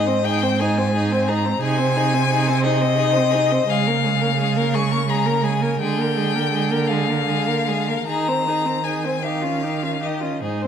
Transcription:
0.00 1.57 G#2 medium
0.00 0.26 D#5 medium
0.07 0.25 C4 soft
0.07 0.24 C5 soft
0.24 0.45 D#4 soft
0.24 0.44 G#4 medium
0.24 0.62 G5 medium
0.43 0.63 C4 medium
0.43 0.61 C5 medium
0.59 0.80 D#4 medium
0.59 0.79 G#4 medium
0.59 1.30 G#5 medium
0.77 0.94 C4 soft
0.77 0.93 C5 soft
0.93 1.14 D#4 soft
0.93 1.13 G#4 medium
1.12 1.30 C4 medium
1.12 1.30 C5 medium
1.28 1.47 D#4 medium
1.28 1.47 G#4 soft
1.28 1.61 A#5 medium
1.45 1.62 C4 soft
1.45 1.60 C5 medium
1.60 3.65 C3 medium
1.60 1.81 D#4 medium
1.60 1.79 G#4 medium
1.60 2.63 G#5 medium
1.78 1.98 C4 medium
1.78 1.98 C5 soft
1.96 2.15 D#4 medium
1.96 2.15 G#4 medium
2.13 2.30 C4 soft
2.13 2.30 C5 soft
2.31 2.51 D#4 medium
2.31 2.49 G#4 medium
2.47 2.68 C4 medium
2.47 2.65 C5 medium
2.63 2.85 D#4 medium
2.63 2.83 G#4 medium
2.63 3.72 D#5 loud
2.81 2.99 C4 soft
2.81 2.97 C5 medium
2.97 3.19 D#4 soft
2.97 3.14 G#4 medium
3.12 3.33 C5 soft
3.18 3.36 C4 soft
3.31 3.54 D#4 soft
3.31 3.53 G#4 soft
3.52 3.68 C4 soft
3.52 3.69 C5 soft
3.68 5.81 C#3 medium
3.68 3.89 G#3 medium
3.68 3.89 G#4 medium
3.68 4.76 F5 medium
3.87 4.07 A#3 medium
3.87 4.06 A#4 soft
4.04 4.24 G#3 medium
4.04 4.22 G#4 soft
4.21 4.39 A#3 soft
4.21 4.39 A#4 soft
4.39 4.58 G#3 soft
4.39 4.58 G#4 soft
4.57 4.77 A#3 medium
4.57 4.76 A#4 medium
4.74 4.94 G#3 medium
4.74 4.92 G#4 medium
4.74 5.11 C#6 medium
4.91 5.07 A#3 soft
4.91 5.08 A#4 soft
5.08 5.27 G#3 soft
5.08 5.27 G#4 medium
5.08 5.47 A#5 medium
5.26 5.44 A#3 soft
5.26 5.45 A#4 soft
5.42 5.63 G#3 soft
5.42 5.64 G#4 soft
5.42 5.79 G#5 medium
5.61 5.79 A#3 soft
5.61 5.80 A#4 soft
5.79 8.05 D3 medium
5.79 5.99 G#3 soft
5.79 6.02 G#4 medium
5.79 6.89 G5 medium
5.98 6.18 A#3 soft
5.98 6.19 A#4 soft
6.17 6.36 G#3 medium
6.17 6.37 G#4 soft
6.35 6.52 A#3 soft
6.35 6.52 A#4 soft
6.53 6.72 G#3 soft
6.53 6.72 G#4 soft
6.70 6.91 A#3 soft
6.70 6.92 A#4 soft
6.87 7.09 G#3 soft
6.87 7.11 G#4 soft
6.87 8.06 F5 medium
7.08 7.26 A#3 soft
7.08 7.26 A#4 soft
7.27 7.49 G#3 soft
7.27 7.49 G#4 soft
7.47 7.70 A#3 soft
7.47 7.70 A#4 soft
7.68 7.90 G#3 soft
7.68 7.89 G#4 soft
7.88 8.07 A#3 soft
7.88 8.07 A#4 soft
8.06 10.44 D#3 medium
8.06 8.30 D#4 soft
8.06 8.29 G#4 medium
8.06 8.86 A#5 medium
8.28 8.49 C4 soft
8.28 8.50 C5 soft
8.48 8.67 D#4 soft
8.48 8.68 G#4 soft
8.66 8.84 C4 soft
8.66 8.85 C5 soft
8.84 9.07 D#4 soft
8.84 9.06 G#4 soft
8.84 9.25 G#5 medium
9.04 9.24 C4 soft
9.04 9.23 C5 soft
9.23 9.46 D#4 soft
9.23 9.43 G4 soft
9.23 10.04 F5 medium
9.42 9.65 C#4 soft
9.42 9.63 F4 soft
9.62 9.85 D#4 soft
9.62 9.84 G4 soft
9.82 10.02 C#4 soft
9.82 10.00 F4 soft
10.01 10.24 D#4 soft
10.01 10.22 G4 soft
10.01 10.42 D#5 medium
10.21 10.42 C#4 soft
10.21 10.41 F4 soft
10.42 10.67 G#2 soft
10.42 10.66 D#4 soft
10.42 10.63 G#4 soft
10.42 10.67 C5 medium
10.62 10.67 C4 soft
10.62 10.67 C5 soft

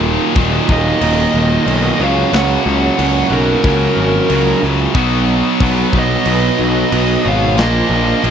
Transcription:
0.00 0.17 D#1 loud
0.00 0.34 D#2 loud
0.00 0.35 A#2 loud
0.00 0.35 D#3 loud
0.00 2.01 F#3 loud
0.00 1.99 A#3 medium
0.00 1.99 D#4 loud
0.35 0.59 D#1 medium
0.35 0.68 D#2 medium
0.35 0.68 A#2 medium
0.35 0.68 D#3 medium
0.35 kick medium
0.35 crash medium
0.68 0.92 D#1 medium
0.68 0.98 D#2 medium
0.68 0.99 A#2 loud
0.68 1.00 D#3 loud
0.68 kick medium
0.72 1.98 A#4 medium
0.72 2.03 D#5 medium
1.00 1.25 D#1 loud
1.00 1.65 D#2 loud
1.00 1.66 A#2 medium
1.00 1.66 D#3 loud
1.00 crash medium
1.34 1.57 D#1 medium
1.67 1.90 B1 medium
1.67 1.98 D#2 medium
1.67 1.98 A#2 loud
1.67 1.98 D#3 medium
1.67 crash medium
1.99 2.23 C#2 medium
1.99 2.30 F#2 loud
1.99 2.31 C#3 loud
1.99 2.33 F#3 loud
1.99 4.61 A#3 loud
1.99 4.61 C#4 loud
1.99 4.61 F#4 loud
1.99 2.31 C#5 medium
2.04 2.35 F5 loud
2.32 2.56 C#2 medium
2.32 2.96 F#2 loud
2.32 2.97 C#3 loud
2.32 2.98 F#3 loud
2.32 3.28 C#5 medium
2.32 3.29 F#5 loud
2.32 snare loud
2.32 crash medium
2.66 2.89 C#2 loud
2.97 3.22 C#2 medium
2.97 3.30 F#2 medium
2.97 3.31 C#3 medium
2.97 3.32 F#3 loud
2.97 crash medium
3.31 3.54 B1 loud
3.31 3.62 F#2 medium
3.31 3.63 C#3 medium
3.31 3.64 F#3 loud
3.31 4.59 F#4 medium
3.31 4.59 A#4 medium
3.63 3.87 C#2 loud
3.63 4.29 F#2 loud
3.63 4.29 C#3 loud
3.63 4.30 F#3 loud
3.63 kick loud
3.63 crash medium
3.97 4.20 G#1 medium
4.30 4.53 C#2 medium
4.30 4.61 F#2 medium
4.30 4.62 C#3 loud
4.30 4.62 F#3 loud
4.30 crash medium
4.63 4.86 C#2 medium
4.63 4.93 F#2 medium
4.63 4.94 C#3 loud
4.63 4.94 F#3 medium
4.95 5.41 B1 loud
4.95 5.60 B2 loud
4.95 5.60 F#3 loud
4.95 5.60 B3 loud
4.95 7.57 D#4 loud
4.95 7.57 F#4 loud
4.95 kick loud
4.95 crash medium
5.60 5.84 B1 medium
5.60 5.92 B2 medium
5.60 5.92 F#3 loud
5.60 5.93 B3 medium
5.60 kick loud
5.60 crash medium
5.93 6.16 B1 medium
5.93 6.24 B2 loud
5.93 6.25 F#3 loud
5.93 6.26 B3 medium
5.93 kick medium
5.97 7.23 B4 medium
5.97 7.31 D#5 medium
6.25 6.49 B1 loud
6.25 6.90 B2 loud
6.25 6.91 F#3 loud
6.25 6.91 B3 loud
6.25 crash medium
6.59 6.82 B1 medium
6.92 7.15 B1 loud
6.92 7.23 B2 loud
6.92 7.24 F#3 loud
6.92 7.24 B3 loud
6.92 crash medium
7.24 7.58 G#1 medium
7.24 7.55 B2 medium
7.24 7.56 F#3 medium
7.24 7.56 B3 loud
7.24 7.56 C#5 loud
7.24 7.60 F5 loud
7.57 7.81 A#1 loud
7.57 8.22 A#2 loud
7.57 8.23 F3 loud
7.57 8.23 A#3 loud
7.57 8.30 D4 loud
7.57 8.30 F4 loud
7.57 8.30 A#4 medium
7.57 8.30 D#5 loud
7.57 snare loud
7.57 crash medium
7.89 8.13 A#1 medium
8.23 8.30 A#1 loud
8.23 8.30 A#2 loud
8.23 8.30 F3 medium
8.23 8.30 A#3 medium
8.23 crash medium

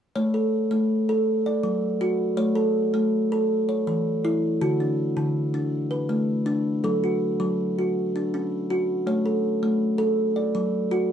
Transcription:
0.16 0.52 A3 medium
0.16 0.71 C#5 medium
0.34 0.89 A4 medium
0.71 1.08 A3 medium
1.09 1.27 A4 medium
1.46 2.01 D5 medium
1.63 2.01 F#3 medium
2.01 2.38 F#4 medium
2.37 2.75 A3 medium
2.37 2.93 C#5 medium
2.55 3.12 A4 medium
2.94 3.31 A3 medium
3.32 3.50 A4 medium
3.69 4.24 C#5 medium
3.87 4.24 E3 medium
4.25 4.61 E4 medium
4.61 4.98 D3 medium
4.61 5.17 F#4 medium
4.80 5.35 D4 medium
5.17 5.54 D3 medium
5.54 5.91 D4 medium
5.91 6.46 B4 medium
6.09 6.46 A3 medium
6.46 6.83 D4 medium
6.84 7.21 F#3 medium
6.84 7.39 A4 medium
7.04 7.58 F#4 medium
7.40 7.77 F#3 medium
7.79 8.14 F#4 medium
8.16 8.70 D4 medium
8.34 8.70 C#4 medium
8.70 9.07 F#4 medium
9.07 9.44 A3 medium
9.07 9.62 C#5 medium
9.26 9.81 A4 medium
9.63 9.99 A3 medium
9.98 10.17 A4 medium
10.36 10.92 D5 medium
10.55 10.92 F#3 medium
10.91 11.12 F#4 medium

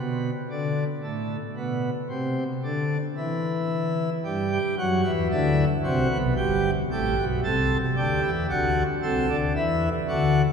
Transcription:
0.00 0.31 B2 medium
0.50 0.84 D3 medium
1.03 1.36 A2 medium
1.57 1.90 B2 medium
2.10 2.43 C3 medium
2.64 2.97 D3 medium
3.17 4.10 E3 medium
4.24 4.58 G2 medium
4.24 4.58 G3 medium
4.52 4.75 G4 medium
4.78 5.01 F#2 medium
4.78 5.01 F#3 medium
4.78 5.12 F#4 medium
5.05 5.28 E2 medium
5.05 5.28 E3 medium
5.31 5.64 D2 medium
5.31 5.64 D3 medium
5.31 5.65 E4 medium
5.84 6.07 C2 medium
5.84 6.07 C3 medium
5.84 6.17 F#4 medium
6.11 6.34 B1 medium
6.11 6.34 B2 medium
6.36 6.70 G1 medium
6.36 6.70 G2 medium
6.36 6.70 G4 medium
6.91 7.15 A1 medium
6.91 7.14 A2 medium
6.91 7.24 G4 medium
7.17 7.41 B1 medium
7.17 7.41 B2 medium
7.44 7.77 C2 medium
7.44 7.77 C3 medium
7.44 7.77 A4 medium
7.97 8.20 D2 medium
7.97 8.20 D3 medium
7.97 8.30 G4 medium
8.23 8.46 E2 medium
8.23 8.46 E3 medium
8.49 8.83 D2 medium
8.49 8.83 D3 medium
8.49 8.83 F#4 medium
9.03 9.26 C2 medium
9.03 9.26 C3 medium
9.03 9.36 A4 medium
9.29 9.53 D2 medium
9.29 9.52 D3 medium
9.56 9.89 E2 medium
9.56 9.89 E3 medium
9.56 9.89 E4 medium
10.08 10.42 D2 medium
10.08 10.42 D3 medium
10.08 10.42 F#4 medium

